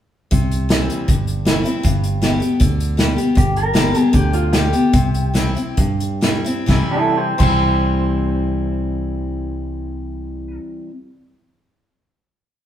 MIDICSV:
0, 0, Header, 1, 5, 480
1, 0, Start_track
1, 0, Key_signature, 0, "major"
1, 0, Tempo, 382166
1, 398, Time_signature, 4, 2, 24, 8
1, 5198, Tempo, 408998
1, 7118, Tempo, 454545
1, 8078, Tempo, 476190
1, 14093, End_track
2, 0, Start_track
2, 0, Title_t, "Clean electric guitar"
2, 0, Program_c, 0, 27
2, 4241, Note_on_c, 0, 67, 82
2, 4469, Note_off_c, 0, 67, 0
2, 4488, Note_on_c, 0, 70, 81
2, 5015, Note_off_c, 0, 70, 0
2, 5015, Note_on_c, 0, 68, 81
2, 5184, Note_off_c, 0, 68, 0
2, 5214, Note_on_c, 0, 67, 79
2, 5427, Note_off_c, 0, 67, 0
2, 5432, Note_on_c, 0, 65, 83
2, 5652, Note_off_c, 0, 65, 0
2, 5652, Note_on_c, 0, 67, 89
2, 7070, Note_off_c, 0, 67, 0
2, 8308, Note_on_c, 0, 64, 69
2, 8314, Note_on_c, 0, 69, 72
2, 8556, Note_off_c, 0, 64, 0
2, 8556, Note_on_c, 0, 67, 59
2, 8566, Note_off_c, 0, 69, 0
2, 8566, Note_on_c, 0, 72, 65
2, 8775, Note_off_c, 0, 72, 0
2, 8788, Note_on_c, 0, 72, 83
2, 8796, Note_off_c, 0, 67, 0
2, 11987, Note_off_c, 0, 72, 0
2, 14093, End_track
3, 0, Start_track
3, 0, Title_t, "Steel-string acoustic guitar"
3, 0, Program_c, 1, 25
3, 389, Note_on_c, 1, 48, 82
3, 865, Note_on_c, 1, 52, 54
3, 867, Note_on_c, 1, 55, 56
3, 881, Note_on_c, 1, 60, 58
3, 883, Note_on_c, 1, 64, 56
3, 1305, Note_off_c, 1, 48, 0
3, 1327, Note_off_c, 1, 52, 0
3, 1328, Note_off_c, 1, 55, 0
3, 1335, Note_off_c, 1, 60, 0
3, 1337, Note_off_c, 1, 64, 0
3, 1356, Note_on_c, 1, 43, 77
3, 1825, Note_on_c, 1, 52, 50
3, 1827, Note_on_c, 1, 55, 56
3, 1838, Note_on_c, 1, 60, 55
3, 1844, Note_on_c, 1, 64, 57
3, 2040, Note_off_c, 1, 64, 0
3, 2055, Note_on_c, 1, 64, 48
3, 2061, Note_off_c, 1, 52, 0
3, 2062, Note_off_c, 1, 55, 0
3, 2068, Note_off_c, 1, 60, 0
3, 2084, Note_on_c, 1, 60, 40
3, 2268, Note_off_c, 1, 43, 0
3, 2296, Note_off_c, 1, 64, 0
3, 2303, Note_on_c, 1, 43, 78
3, 2310, Note_off_c, 1, 60, 0
3, 2782, Note_on_c, 1, 50, 51
3, 2785, Note_on_c, 1, 55, 55
3, 2795, Note_on_c, 1, 59, 57
3, 2805, Note_on_c, 1, 67, 58
3, 2999, Note_off_c, 1, 67, 0
3, 3014, Note_on_c, 1, 67, 52
3, 3017, Note_off_c, 1, 59, 0
3, 3019, Note_off_c, 1, 50, 0
3, 3020, Note_off_c, 1, 55, 0
3, 3032, Note_on_c, 1, 59, 43
3, 3220, Note_off_c, 1, 43, 0
3, 3255, Note_off_c, 1, 67, 0
3, 3263, Note_off_c, 1, 59, 0
3, 3263, Note_on_c, 1, 50, 86
3, 3717, Note_off_c, 1, 50, 0
3, 3732, Note_on_c, 1, 50, 55
3, 3742, Note_on_c, 1, 55, 56
3, 3752, Note_on_c, 1, 59, 55
3, 3753, Note_on_c, 1, 67, 57
3, 3960, Note_off_c, 1, 67, 0
3, 3973, Note_off_c, 1, 50, 0
3, 3975, Note_on_c, 1, 67, 50
3, 3977, Note_off_c, 1, 55, 0
3, 3982, Note_off_c, 1, 59, 0
3, 4000, Note_on_c, 1, 59, 39
3, 4211, Note_on_c, 1, 43, 73
3, 4213, Note_off_c, 1, 67, 0
3, 4226, Note_off_c, 1, 59, 0
3, 4691, Note_on_c, 1, 50, 59
3, 4698, Note_on_c, 1, 55, 59
3, 4702, Note_on_c, 1, 59, 61
3, 4710, Note_on_c, 1, 67, 63
3, 4915, Note_off_c, 1, 67, 0
3, 4930, Note_on_c, 1, 67, 49
3, 4933, Note_off_c, 1, 50, 0
3, 4937, Note_off_c, 1, 55, 0
3, 4939, Note_off_c, 1, 59, 0
3, 4952, Note_on_c, 1, 59, 43
3, 5138, Note_off_c, 1, 43, 0
3, 5176, Note_off_c, 1, 67, 0
3, 5186, Note_off_c, 1, 59, 0
3, 5187, Note_on_c, 1, 50, 87
3, 5642, Note_off_c, 1, 50, 0
3, 5656, Note_on_c, 1, 50, 57
3, 5665, Note_on_c, 1, 55, 52
3, 5672, Note_on_c, 1, 59, 54
3, 5682, Note_on_c, 1, 67, 56
3, 5875, Note_off_c, 1, 67, 0
3, 5882, Note_off_c, 1, 50, 0
3, 5887, Note_off_c, 1, 55, 0
3, 5889, Note_on_c, 1, 67, 56
3, 5890, Note_off_c, 1, 59, 0
3, 5910, Note_on_c, 1, 59, 39
3, 6119, Note_off_c, 1, 67, 0
3, 6129, Note_off_c, 1, 59, 0
3, 6131, Note_on_c, 1, 48, 84
3, 6603, Note_on_c, 1, 52, 58
3, 6610, Note_on_c, 1, 55, 59
3, 6619, Note_on_c, 1, 60, 64
3, 6626, Note_on_c, 1, 64, 65
3, 6839, Note_off_c, 1, 64, 0
3, 6848, Note_off_c, 1, 52, 0
3, 6852, Note_off_c, 1, 55, 0
3, 6853, Note_on_c, 1, 64, 53
3, 6856, Note_off_c, 1, 60, 0
3, 6876, Note_on_c, 1, 60, 41
3, 7067, Note_off_c, 1, 48, 0
3, 7102, Note_off_c, 1, 64, 0
3, 7113, Note_off_c, 1, 60, 0
3, 7115, Note_on_c, 1, 43, 83
3, 7580, Note_on_c, 1, 52, 47
3, 7585, Note_on_c, 1, 55, 60
3, 7592, Note_on_c, 1, 60, 59
3, 7597, Note_on_c, 1, 64, 55
3, 7812, Note_off_c, 1, 64, 0
3, 7816, Note_off_c, 1, 52, 0
3, 7818, Note_off_c, 1, 55, 0
3, 7822, Note_off_c, 1, 60, 0
3, 7825, Note_on_c, 1, 64, 55
3, 7851, Note_on_c, 1, 60, 45
3, 8026, Note_off_c, 1, 43, 0
3, 8056, Note_on_c, 1, 48, 71
3, 8065, Note_off_c, 1, 64, 0
3, 8068, Note_on_c, 1, 52, 71
3, 8071, Note_off_c, 1, 60, 0
3, 8078, Note_on_c, 1, 55, 86
3, 8084, Note_on_c, 1, 60, 78
3, 8089, Note_on_c, 1, 64, 84
3, 8731, Note_off_c, 1, 48, 0
3, 8731, Note_off_c, 1, 52, 0
3, 8731, Note_off_c, 1, 55, 0
3, 8731, Note_off_c, 1, 60, 0
3, 8731, Note_off_c, 1, 64, 0
3, 8781, Note_on_c, 1, 48, 68
3, 8789, Note_on_c, 1, 52, 72
3, 8796, Note_on_c, 1, 55, 77
3, 8802, Note_on_c, 1, 60, 76
3, 8814, Note_on_c, 1, 64, 83
3, 12309, Note_off_c, 1, 48, 0
3, 12317, Note_off_c, 1, 52, 0
3, 12324, Note_off_c, 1, 55, 0
3, 12330, Note_off_c, 1, 60, 0
3, 12342, Note_off_c, 1, 64, 0
3, 14093, End_track
4, 0, Start_track
4, 0, Title_t, "Fingered electric bass"
4, 0, Program_c, 2, 33
4, 407, Note_on_c, 2, 36, 77
4, 1105, Note_off_c, 2, 36, 0
4, 1370, Note_on_c, 2, 31, 72
4, 2066, Note_off_c, 2, 31, 0
4, 2324, Note_on_c, 2, 31, 80
4, 3021, Note_off_c, 2, 31, 0
4, 3276, Note_on_c, 2, 38, 74
4, 3975, Note_off_c, 2, 38, 0
4, 4238, Note_on_c, 2, 31, 82
4, 4941, Note_off_c, 2, 31, 0
4, 5206, Note_on_c, 2, 38, 80
4, 5885, Note_off_c, 2, 38, 0
4, 6137, Note_on_c, 2, 36, 77
4, 6856, Note_off_c, 2, 36, 0
4, 7128, Note_on_c, 2, 43, 73
4, 7825, Note_off_c, 2, 43, 0
4, 8086, Note_on_c, 2, 36, 79
4, 8216, Note_off_c, 2, 36, 0
4, 8801, Note_on_c, 2, 36, 85
4, 12000, Note_off_c, 2, 36, 0
4, 14093, End_track
5, 0, Start_track
5, 0, Title_t, "Drums"
5, 403, Note_on_c, 9, 36, 100
5, 404, Note_on_c, 9, 42, 75
5, 528, Note_off_c, 9, 36, 0
5, 530, Note_off_c, 9, 42, 0
5, 646, Note_on_c, 9, 42, 57
5, 772, Note_off_c, 9, 42, 0
5, 883, Note_on_c, 9, 38, 107
5, 883, Note_on_c, 9, 42, 81
5, 1009, Note_off_c, 9, 38, 0
5, 1009, Note_off_c, 9, 42, 0
5, 1128, Note_on_c, 9, 42, 56
5, 1253, Note_off_c, 9, 42, 0
5, 1364, Note_on_c, 9, 36, 102
5, 1370, Note_on_c, 9, 42, 79
5, 1490, Note_off_c, 9, 36, 0
5, 1495, Note_off_c, 9, 42, 0
5, 1600, Note_on_c, 9, 42, 57
5, 1725, Note_off_c, 9, 42, 0
5, 1841, Note_on_c, 9, 38, 96
5, 1841, Note_on_c, 9, 42, 84
5, 1966, Note_off_c, 9, 38, 0
5, 1966, Note_off_c, 9, 42, 0
5, 2078, Note_on_c, 9, 42, 58
5, 2203, Note_off_c, 9, 42, 0
5, 2317, Note_on_c, 9, 42, 81
5, 2320, Note_on_c, 9, 36, 91
5, 2443, Note_off_c, 9, 42, 0
5, 2445, Note_off_c, 9, 36, 0
5, 2557, Note_on_c, 9, 42, 52
5, 2683, Note_off_c, 9, 42, 0
5, 2795, Note_on_c, 9, 38, 101
5, 2795, Note_on_c, 9, 42, 75
5, 2920, Note_off_c, 9, 38, 0
5, 2920, Note_off_c, 9, 42, 0
5, 3038, Note_on_c, 9, 42, 52
5, 3164, Note_off_c, 9, 42, 0
5, 3273, Note_on_c, 9, 42, 69
5, 3277, Note_on_c, 9, 36, 99
5, 3399, Note_off_c, 9, 42, 0
5, 3402, Note_off_c, 9, 36, 0
5, 3521, Note_on_c, 9, 42, 53
5, 3647, Note_off_c, 9, 42, 0
5, 3753, Note_on_c, 9, 38, 106
5, 3753, Note_on_c, 9, 42, 73
5, 3878, Note_off_c, 9, 38, 0
5, 3878, Note_off_c, 9, 42, 0
5, 3995, Note_on_c, 9, 42, 51
5, 4121, Note_off_c, 9, 42, 0
5, 4235, Note_on_c, 9, 36, 107
5, 4237, Note_on_c, 9, 42, 78
5, 4361, Note_off_c, 9, 36, 0
5, 4363, Note_off_c, 9, 42, 0
5, 4476, Note_on_c, 9, 42, 53
5, 4602, Note_off_c, 9, 42, 0
5, 4709, Note_on_c, 9, 38, 101
5, 4709, Note_on_c, 9, 42, 79
5, 4835, Note_off_c, 9, 38, 0
5, 4835, Note_off_c, 9, 42, 0
5, 4955, Note_on_c, 9, 42, 58
5, 5081, Note_off_c, 9, 42, 0
5, 5201, Note_on_c, 9, 36, 99
5, 5201, Note_on_c, 9, 42, 77
5, 5318, Note_off_c, 9, 36, 0
5, 5318, Note_off_c, 9, 42, 0
5, 5427, Note_on_c, 9, 42, 63
5, 5544, Note_off_c, 9, 42, 0
5, 5660, Note_on_c, 9, 38, 101
5, 5660, Note_on_c, 9, 42, 75
5, 5777, Note_off_c, 9, 38, 0
5, 5777, Note_off_c, 9, 42, 0
5, 5896, Note_on_c, 9, 42, 62
5, 6014, Note_off_c, 9, 42, 0
5, 6133, Note_on_c, 9, 42, 86
5, 6135, Note_on_c, 9, 36, 100
5, 6250, Note_off_c, 9, 42, 0
5, 6252, Note_off_c, 9, 36, 0
5, 6378, Note_on_c, 9, 42, 58
5, 6495, Note_off_c, 9, 42, 0
5, 6619, Note_on_c, 9, 38, 107
5, 6619, Note_on_c, 9, 42, 78
5, 6736, Note_off_c, 9, 38, 0
5, 6736, Note_off_c, 9, 42, 0
5, 6871, Note_on_c, 9, 42, 58
5, 6989, Note_off_c, 9, 42, 0
5, 7120, Note_on_c, 9, 42, 74
5, 7122, Note_on_c, 9, 36, 92
5, 7226, Note_off_c, 9, 42, 0
5, 7228, Note_off_c, 9, 36, 0
5, 7360, Note_on_c, 9, 42, 58
5, 7465, Note_off_c, 9, 42, 0
5, 7593, Note_on_c, 9, 38, 101
5, 7593, Note_on_c, 9, 42, 73
5, 7699, Note_off_c, 9, 38, 0
5, 7699, Note_off_c, 9, 42, 0
5, 7840, Note_on_c, 9, 42, 56
5, 7945, Note_off_c, 9, 42, 0
5, 8082, Note_on_c, 9, 36, 90
5, 8082, Note_on_c, 9, 38, 78
5, 8183, Note_off_c, 9, 36, 0
5, 8183, Note_off_c, 9, 38, 0
5, 8798, Note_on_c, 9, 49, 73
5, 8800, Note_on_c, 9, 36, 95
5, 8899, Note_off_c, 9, 49, 0
5, 8900, Note_off_c, 9, 36, 0
5, 14093, End_track
0, 0, End_of_file